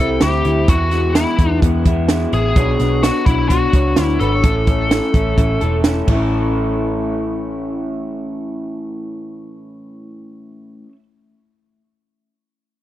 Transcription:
Already playing: C2 C3 E3 G3 C4 E4 A4
0.00 G3 C4
0.21 D2 C3 G3 C4 E4 G4, snare, closed hi-hat
0.45 D2 E4, closed hi-hat
0.68 E2 E3 G#3 B3 E4 F#4, kick, closed hi-hat
0.91 G#3 B3 E4, snare, closed hi-hat
1.14 E3 G#3 B3 E4, snare, closed hi-hat
1.38 E2 G#3 B3 E4, kick, closed hi-hat
1.62 E2 E3 G#3 B3 E4, kick, closed hi-hat
1.85 E2 G#3 B3 E4, kick, closed hi-hat
2.09 E3 G#3 B3 E4, snare, closed hi-hat
2.33 A1 E4 G#4, closed hi-hat
2.55 B1 B2 F#3 B3 D4 F#4 C#5, kick, closed hi-hat
2.79 B1 B3 D4 F#4 C#5, snare, closed hi-hat
3.02 B2 F#3 B3 D4 F#4 C#5, snare, closed hi-hat
3.25 B1 B3 D4 E4 F#4 C#5, kick, closed hi-hat
3.49 B3 D4 F#4 C#5, kick, closed hi-hat
3.72 C#2 B3 D4 F#4 C#5, kick, closed hi-hat
3.95 D2 B2 F#3 B3 D4 F#4 C#5, snare, closed hi-hat
4.03 E4
4.20 G#1 A4 B4, closed hi-hat
4.32 C#5
4.42 A1 A2 E3 A3 C#4 E4 A4, kick, closed hi-hat
4.65 A3 C#4 E4 A4, kick, closed hi-hat
4.90 A2 E3 A3 C#4 E4 A4, snare, closed hi-hat
5.13 A1 A3 C#4 E4 A4, kick, closed hi-hat
5.37 A1 A3 C#4 E4 A4, kick, closed hi-hat
5.61 E1 A3 C#4 E4 A4, closed hi-hat
5.84 A2 E3 A3 C#4 E4 A4, snare, closed hi-hat
6.02 A2
6.08 A1 E3 A3 C#4, kick, crash
6.12 C#4 E4 A4
6.18 E4 A4

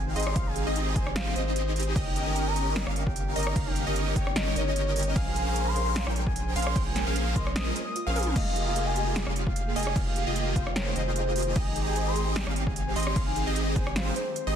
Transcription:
Already playing: G#1 D#3 G#3 C4 D#4 G4 G#4 F5 G#5
0.07 C5
0.16 G#1 C4 D#4 G4 G#4 D#5 C6, closed hi-hat
0.20 closed hi-hat
0.23 closed hi-hat
0.27 G4, cross-stick
0.36 G#1 D#4 C5 F5, kick, closed hi-hat
0.47 G#5
0.56 G#4, closed hi-hat
0.67 G#1 C4 D#4 G4 G#4 D#5
0.76 D#4, closed hi-hat
0.87 C5
0.96 G#1 G#4 C5 G#5, kick, closed hi-hat
1.07 G4, cross-stick
1.16 C5 F5, snare, closed hi-hat
1.36 G#1 C4 D#4 G4 G#4 C5 D#5, closed hi-hat
1.47 D#4
1.56 G4, closed hi-hat
1.67 D#5
1.76 G4, closed hi-hat
1.80 closed hi-hat
1.83 G#5, closed hi-hat
1.96 G1 C#3 G3 A#3 C#4 D#4 C#5 D#5 G5, kick, closed hi-hat, crash
2.07 D#4
2.16 A#4, closed hi-hat
2.27 G4 G5
2.36 closed hi-hat
2.47 C#5 A#5
2.56 A#4, closed hi-hat
2.67 G4
2.76 C#5, snare, closed hi-hat
2.87 G1 C#4 D#4 G4 A#4 F5, cross-stick
2.96 A#4, closed hi-hat
3.07 G4 G5, kick
3.16 closed hi-hat
3.27 C#5
3.36 G1 C#4 D#4 G4 A#4 D#5 A#5, closed hi-hat, open hi-hat
3.43 closed hi-hat
3.47 G4, cross-stick
3.56 G1 C#5 F5, kick, closed hi-hat, crash
3.67 D#4 G5
3.76 A#4, closed hi-hat
3.87 G1 C#4 D#4 G4 A#4 D#5
3.96 closed hi-hat
4.07 C#5
4.16 G1 A#4 C#5 G5, kick, closed hi-hat
4.27 G4, cross-stick
4.36 C#5 D#5, snare, closed hi-hat
4.47 D#4
4.56 G1 C#4 D#4 G4 A#4 C#5 D#5, closed hi-hat
4.67 G4
4.76 closed hi-hat
4.87 C#5
4.96 A#4, closed hi-hat, open hi-hat
5.03 closed hi-hat
5.07 G4
5.16 A#1 G#3 C#4 C5 F5 G#5, kick, closed hi-hat, crash
5.27 F4
5.36 A#4, closed hi-hat
5.47 G#4 G#5
5.56 closed hi-hat
5.67 C5 C6
5.76 A#4, closed hi-hat
5.87 G#4
5.96 snare, closed hi-hat
6.07 A#1 C#4 F4 G#4 A#4 C5 G5, cross-stick
6.16 A#4, closed hi-hat
6.26 G#4 G#5, kick
6.36 closed hi-hat
6.47 C5
6.56 A#1 C#4 G#4 A#4 C5 F5 C6, closed hi-hat, open hi-hat
6.62 closed hi-hat
6.67 G#4, cross-stick
6.76 A#1 C#4 G#4 A#4 C5 G5, kick, closed hi-hat, crash
6.86 F4 G#5
6.96 A#4, snare, closed hi-hat
7.07 A#1 C#4 G#4 A#4 C5 F5
7.16 closed hi-hat
7.27 C5
7.36 A#1 C#4 G#4 A#4 C5 D#5 C6, kick, closed hi-hat
7.47 G#4, cross-stick
7.55 C5 D#6, snare, closed hi-hat
7.67 F4
7.76 F4 D#6, closed hi-hat
7.87 A#4
7.96 F4, closed hi-hat
8.07 A#1 C#4 G#4 A#4 C5 F5
8.16 C5, closed hi-hat, open hi-hat, high tom
8.23 closed hi-hat
8.27 C5, mid tom
8.36 F1 D#3 G#3 A#3 F4 G4 G#4 D#5 F5 G5, kick, closed hi-hat, crash
8.47 D#4
8.56 G4, closed hi-hat
8.67 F4 F5
8.76 closed hi-hat
8.87 G#4 G#5
8.96 G4, closed hi-hat
9.07 F4
9.16 G#4, snare, closed hi-hat
9.27 F1 A#3 D#4 F4 G4 G#4 F5, cross-stick
9.36 G4, closed hi-hat
9.47 F4 F5, kick
9.56 closed hi-hat
9.67 G#4
9.76 F1 A#3 F4 G4 G#4 D#5 G#5, closed hi-hat, open hi-hat
9.83 closed hi-hat
9.87 F4, cross-stick
9.96 F1 A#3 F4 G4 G#4 F5, kick, closed hi-hat, crash
10.07 D#4 F5
10.16 G4, closed hi-hat
10.27 F1 A#3 F4 G4 G#4 D#5
10.36 closed hi-hat
10.47 G#4
10.56 F1 A#3 F4 G4 G#4 C5 F5, kick, closed hi-hat
10.67 F4, cross-stick
10.76 G#4 C#5, snare, closed hi-hat
10.87 D#4
10.96 F1 A#3 F4 G4 G#4 C5 D#5, closed hi-hat
11.07 F4
11.16 closed hi-hat
11.27 G#4
11.36 G4, closed hi-hat, open hi-hat
11.42 closed hi-hat
11.47 F4
11.56 G#1 C4 D#4 G4 D#5 G#5, kick, closed hi-hat, crash
11.67 D#4
11.76 G#4, closed hi-hat
11.86 G4 G#5
11.96 closed hi-hat
12.06 C5 C6
12.16 G#4, closed hi-hat
12.27 G4
12.36 snare, closed hi-hat
12.47 G#1 C4 D#4 G4 G#4 F5, cross-stick
12.56 G#4, closed hi-hat
12.67 G4 G#5, kick
12.76 closed hi-hat
12.87 C5
12.96 G#1 C4 D#4 G4 G#4 D#5 C6, closed hi-hat, open hi-hat
13.03 closed hi-hat
13.07 G4, cross-stick
13.16 G#1 C4 D#4 G4 G#4 C5 F5, kick, closed hi-hat, crash
13.27 D#4 G#5
13.36 G#4, closed hi-hat
13.47 G#1 C4 D#4 G4 G#4 D#5
13.56 closed hi-hat
13.67 C5
13.76 G#1 C4 D#4 G4 G#4 C5 G#5, kick, closed hi-hat
13.87 G4, cross-stick
13.96 C5 F5, snare, closed hi-hat
14.07 D#4
14.16 G#4 C5, closed hi-hat
14.27 G4
14.36 closed hi-hat
14.47 G#1 C4 D#4 G4 G#4 C5 D#5

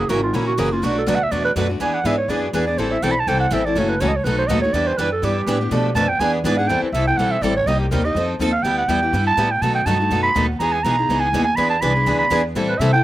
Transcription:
0.00 G#4
0.09 G#1 C#3 E3 F#3 A#3 C#4 E4 F#4 A#4
0.23 F4
0.33 A#1 C#3 E3 F#3 A#3 C#4 E4 F#4 A#4
0.47 F#4
0.58 F#1 C#3 E3 F#3 A#3 C#4 E4 F#4 G#4 A#4
0.71 A#3 C#4 F4 F#4
0.82 B1 B2 F#3 A3 D4 F#4 B4
0.98 A4
1.06 D2 B2 F#3 A3 D4 F#4 B4 D5
1.15 F#5
1.23 E5
1.31 E2 B2 F#3 A3 D4 F#4 B4 D5
1.45 B4
1.56 F#2 B2 F#3 A3 D4 F#4 B4
1.69 A3 D4 F#4
1.80 E2 E3 B3 D4 G#4 B4 G#5
1.94 F#5
2.04 G#2 E3 B3 D4 G#4 B4 E5
2.18 C#5
2.28 F#2 E3 B3 D4 G#4 B4 D5
2.43 F#4
2.53 E2 E3 B3 D4 G#4 B4
2.67 B3 D4 G#4 D5
2.78 A1 E3 G3 C4 E4 A4 C5
2.92 E5
3.03 B1 E3 G3 C4 E4 A4 G5
3.11 B5
3.20 A5
3.27 C2 E3 G3 C4 E4 A4 G5
3.40 F#5
3.51 A1 E3 G3 C4 E4 A4 E5
3.65 C4 E4 A4 D5
3.75 F#1 C#3 E3 F#3 A3 C#4 E4 F#4 A4 C#5
3.89 B4
4.00 C#2 C#3 E3 F#3 A3 C#4 E4 F#4 A4 C#5
4.08 D#5
4.16 C#5
4.24 B1 B2 D#3 F#3 A3 B3 D#4 F#4 A4 B4
4.38 C5
4.47 D#2 B2 D#3 F#3 A3 B3 D#4 F#4 A4 D#5
4.61 D#4 F#4 C#5
4.65 A3
4.73 E2 E3 G3 B3 D4 E4 G4 B4 D5
4.87 C5
4.97 F#2 E3 G3 B3 D4 E4 G4 B4
5.12 A4
5.22 G2 E3 G3 B3 D4 E4 G4 B4
5.47 A2 E3 G3 B3 D4 E4 G4 B4
5.61 B3 D4 G4
5.71 B2 F3 A3 D4 A4 B4
5.95 F2 B2 F3 A3 D4 A4 B4 A5
6.08 G5
6.19 E2 E3 B3 D4 G#4 B4 G#5
6.34 B4
6.44 G#2 E3 B3 D4 G#4 B4 D5
6.57 B3 D4 G#4 F#5
6.68 E2 E3 G3 C4 E4 A4 G5
6.82 B4, muted upright bass stroke
6.92 C2 E3 G3 C4 E4 A4 E5
7.07 C4 E4 A4 G5
7.17 B1 E3 G3 C4 E4 A4 F#5
7.31 E5
7.41 A1 E3 G3 C4 E4 A4 D5
7.56 C#5
7.66 C2 C3 G3 A#3 D#4 G4 D#5
7.80 G4
7.91 D#2 C3 G3 A#3 D#4 G4 A#4
8.05 A#3 D#4 G4 D#5
8.15 F2 F3 C4 D#4 A4
8.39 D#2 F3 C4 D#4 A4
8.52 F5
8.63 D2 G3 B3 E4 G4 G5
8.78 F#5
8.88 E2 G3 B3 E4 G4 G5
9.03 B3 E4 G4
9.13 G2 G3 B3 E4 G4
9.27 A5
9.37 A2 G3 B3 E4 G4
9.51 G5
9.61 B2 D#3 F#3 A3 B3 D#4 F#4 A4 A5
9.75 G5
9.86 G2 B2 D#3 F#3 A3 B3 D#4 F#4 A4 A5
10.00 A3 D#4 F#4
10.11 F#2 B2 D#3 F#3 A3 B3 D#4 F#4 A4
10.23 B5
10.35 D#2 B2 D#3 F#3 A3 B3 D#4 F#4 A4
10.48 F#5
10.59 E2 E3 G#3 B3 D#4 G#4 A#5
10.72 G#5
10.83 B1 E3 G#3 B3 D#4 G#4 A#5
10.98 B3 D#4 G#4
11.09 C#2 E3 G#3 B3 D#4 G#4
11.20 G#5
11.33 D#2 E3 G#3 B3 D#4 G#4
11.44 G#5
11.56 E2 E3 B3 D4 G#4 B4 B5
11.70 A5
11.81 C2 E3 B3 D4 G#4 B4 B5
11.95 B3 D4 G#4
12.06 D2 E3 B3 D4 G#4 B4
12.19 B5
12.30 E2 E3 B3 D4 G#4 B4
12.55 A2 E3 G3 C4 E4 A4
12.68 B4
12.79 C3 E3 G3 C4 E4 A4 E5
12.93 C4 E4 A4 G5

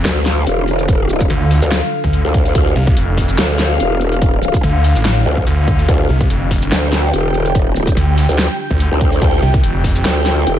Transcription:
Already playing: D3 D4 F4 A4 F5, impact
0.05 D2, snare, closed hi-hat
0.26 snare, shaker
0.47 E1, closed hi-hat
0.68 closed hi-hat
0.79 closed hi-hat
0.88 kick, closed hi-hat
1.09 shaker
1.21 kick, closed hi-hat, shaker
1.30 D2, closed hi-hat
1.51 open hi-hat
1.62 D2, shaker
1.72 snare, closed hi-hat
2.04 D2, kick
2.13 closed hi-hat
2.25 D2
2.34 kick, closed hi-hat
2.46 closed hi-hat
2.55 D2, kick, closed hi-hat
2.76 C2
2.87 kick, closed hi-hat
2.97 F1, closed hi-hat
3.18 kick, open hi-hat
3.29 shaker
3.38 D2, snare, closed hi-hat
3.59 snare, shaker
3.80 E1, closed hi-hat
4.01 closed hi-hat
4.12 closed hi-hat
4.22 kick, closed hi-hat
4.43 shaker
4.54 kick, closed hi-hat, shaker
4.63 D2, closed hi-hat
4.84 open hi-hat
4.96 A1, shaker
5.05 snare, closed hi-hat
5.26 D2
5.37 kick
5.47 D2, closed hi-hat
5.68 kick, closed hi-hat
5.79 closed hi-hat
5.88 D2 G4, kick, closed hi-hat
6.09 C2
6.21 kick, closed hi-hat
6.30 F1, closed hi-hat
6.51 G5, kick, open hi-hat
6.62 shaker
6.72 D2, snare, closed hi-hat
6.93 snare, shaker
7.13 E1, closed hi-hat
7.34 closed hi-hat
7.46 closed hi-hat
7.55 kick, closed hi-hat
7.76 shaker
7.87 kick, closed hi-hat, shaker
7.97 D2, closed hi-hat
8.18 open hi-hat
8.29 D2, shaker
8.38 snare, closed hi-hat
8.71 D2, kick
8.80 closed hi-hat
8.91 D2
9.01 kick, closed hi-hat
9.12 closed hi-hat
9.22 D2, kick, closed hi-hat
9.43 C2
9.54 kick, closed hi-hat
9.63 F1, closed hi-hat
9.84 kick, open hi-hat
9.96 shaker
10.05 D2, snare, closed hi-hat
10.26 snare, shaker
10.47 E1, closed hi-hat

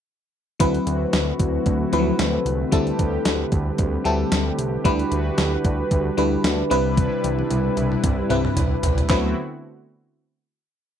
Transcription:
0.60 D2 D3 F#3 A3 C4 E4 F#4 B4, kick, closed hi-hat
0.74 closed hi-hat
0.87 D2, closed hi-hat
1.13 D2, snare, closed hi-hat
1.39 D2, kick, closed hi-hat
1.66 D2, kick, closed hi-hat
1.92 D2 F3 C4 E4 B4, closed hi-hat
1.99 F#3
2.19 D2, snare, closed hi-hat
2.45 C2, closed hi-hat
2.72 D2 G3 C4 E4 G4 A4, kick, closed hi-hat
2.87 closed hi-hat
2.99 D2, kick, closed hi-hat
3.25 D2, snare, closed hi-hat
3.52 D2, kick, closed hi-hat
3.78 D2, kick, closed hi-hat
4.04 D2 G3 C4 E4 A4, closed hi-hat
4.32 D2, snare, closed hi-hat
4.58 C2, closed hi-hat
4.84 D2 G3 D4 E4 F#4 B4, kick, closed hi-hat
4.99 closed hi-hat
5.11 D2, closed hi-hat
5.38 D2, snare, closed hi-hat
5.64 D2, kick, closed hi-hat
5.91 D2, kick, closed hi-hat
6.17 D2 G3 D4 E4 B4, closed hi-hat
6.44 D2, snare, closed hi-hat
6.70 C2 C3 G3 C4 E4 B4, closed hi-hat
6.97 kick, closed hi-hat, high tom
7.24 C2, closed hi-hat, high tom
7.39 high tom
7.50 C2, closed hi-hat, mid tom
7.77 C2, closed hi-hat, mid tom
7.92 mid tom
8.04 C2, kick, closed hi-hat, mid tom
8.29 C2 G3 C4 E4 B4, closed hi-hat, mid tom
8.45 mid tom
8.56 C2, closed hi-hat, floor tom
8.83 C2, closed hi-hat, floor tom
8.98 closed hi-hat, floor tom
9.09 D2 D3 F#3 A3 B3 C4 E4 F#4 B4, kick, snare, clap

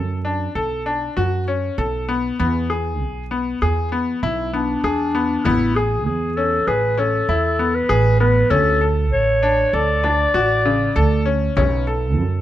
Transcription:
Already playing: F#2 A4
0.25 D4
0.55 B1 A4
0.86 D4
1.17 F#2 F#4
1.48 C#4
1.78 B1 A4
2.09 B3
2.39 E2 B3
2.70 G#4
3.01 B1
3.31 B3
3.62 E2 G#4
3.92 B3
4.23 B1 E4
4.53 B3 D4
4.84 E2 G#4
5.15 B3
5.45 A1 B3 E4, frame drum
5.75 G#4
6.06 E2 G#4
6.37 C#4 A4, frame drum
6.67 A1 G#4 B4
6.98 C#4 A4, frame drum
7.29 E2 E4
7.58 B3, frame drum
7.75 B4
7.89 A1 G#4
8.20 B3 B4
8.50 D2 C#4 A4, frame drum
8.81 A4
9.11 A1 C#5
9.42 D4, frame drum
9.73 D2 A4 D5
10.03 D4, frame drum
10.34 A1 F#4
10.65 C#3, frame drum
10.96 D2 A4
11.25 C#4
11.57 B1 C#4, frame drum
11.87 A4
12.18 F#2

